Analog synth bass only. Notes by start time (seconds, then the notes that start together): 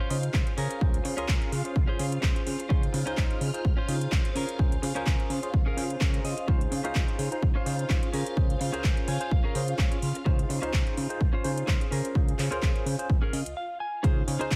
0.10 C#3
0.34 C#2
0.58 C#3
0.81 C#2
1.05 C#3
1.18 C#2
1.28 C#2
1.52 C#3
1.76 C#2
1.89 C#3
1.99 C#3
2.23 C#2
2.47 C#3
2.70 C#2
2.94 C#3
3.07 C#2
3.17 C#2
3.41 C#3
3.65 C#2
3.88 C#3
4.12 C#2
4.35 C#3
4.59 C#2
4.83 C#3
4.96 C#2
5.06 C#2
5.30 C#3
5.54 C#2
5.66 C#3
5.77 C#3
6.01 C#2
6.24 C#3
6.48 C#2
6.71 C#3
6.84 C#2
6.95 C#2
7.19 C#3
7.43 C#2
7.66 C#3
7.90 C#2
8.13 C#3
8.37 C#2
8.61 C#3
8.74 C#2
8.84 C#2
9.08 C#3
9.31 C#2
9.44 C#3
9.55 C#3
9.79 C#2
10.02 C#3
10.26 C#2
10.50 C#3
10.63 C#2
10.73 C#2
10.97 C#3
11.21 C#2
11.45 C#3
11.68 C#2
11.92 C#3
12.15 C#2
12.39 C#3
12.52 C#2
12.62 C#2
12.86 C#3
13.10 C#2
13.22 C#3
13.33 C#3
13.46 C#2
14.04 C#2
14.28 C#3
14.40 C#2
14.51 C#2